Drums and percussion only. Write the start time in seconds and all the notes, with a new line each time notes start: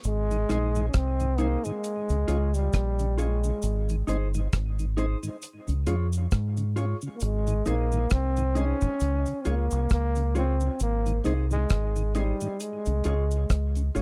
0.04 closed hi-hat, cabasa
0.31 closed hi-hat, cabasa
0.49 cross-stick, closed hi-hat, cabasa
0.75 cabasa
0.94 kick, cross-stick, closed hi-hat, cabasa
1.20 closed hi-hat, cabasa
1.38 closed hi-hat, cabasa
1.64 closed hi-hat, cabasa
1.84 closed hi-hat, cabasa
2.09 closed hi-hat, cabasa
2.28 closed hi-hat, cabasa
2.54 closed hi-hat, cabasa
2.73 kick, cross-stick, closed hi-hat, cabasa
2.99 closed hi-hat, cabasa
3.18 closed hi-hat, cabasa
3.44 cabasa
3.62 closed hi-hat, cabasa
3.89 closed hi-hat, cabasa
4.08 closed hi-hat, cabasa
4.34 closed hi-hat, cabasa
4.53 kick, cross-stick, closed hi-hat, cabasa
4.79 closed hi-hat, cabasa
4.98 closed hi-hat, cabasa
5.23 closed hi-hat, cabasa
5.42 closed hi-hat, cabasa
5.68 closed hi-hat, cabasa
5.87 closed hi-hat, cabasa
6.13 closed hi-hat, cabasa
6.31 kick, cross-stick, closed hi-hat, cabasa
6.57 closed hi-hat, cabasa
6.77 closed hi-hat, cabasa
7.01 cabasa
7.20 closed hi-hat, cabasa
7.47 closed hi-hat, cabasa
7.66 closed hi-hat, cabasa
7.92 cabasa
8.10 kick, cross-stick, closed hi-hat, cabasa
8.37 closed hi-hat, cabasa
8.55 closed hi-hat, cabasa
8.81 kick, closed hi-hat, cabasa
9.00 closed hi-hat, cabasa
9.26 closed hi-hat, cabasa
9.45 closed hi-hat, cabasa
9.71 closed hi-hat, cabasa
9.89 kick, cross-stick, closed hi-hat, cabasa
10.15 closed hi-hat, cabasa
10.35 closed hi-hat, cabasa
10.60 cabasa
10.80 closed hi-hat, cabasa
11.06 closed hi-hat, cabasa
11.25 closed hi-hat, cabasa
11.51 cabasa
11.69 kick, cross-stick, closed hi-hat, cabasa
11.96 closed hi-hat, cabasa
12.15 closed hi-hat, cabasa
12.40 closed hi-hat, cabasa
12.60 closed hi-hat, cabasa
12.86 closed hi-hat, cabasa
13.04 closed hi-hat, cabasa
13.31 closed hi-hat, cabasa
13.50 kick, cross-stick, closed hi-hat, cabasa
13.75 closed hi-hat, cabasa
13.95 open hi-hat, cabasa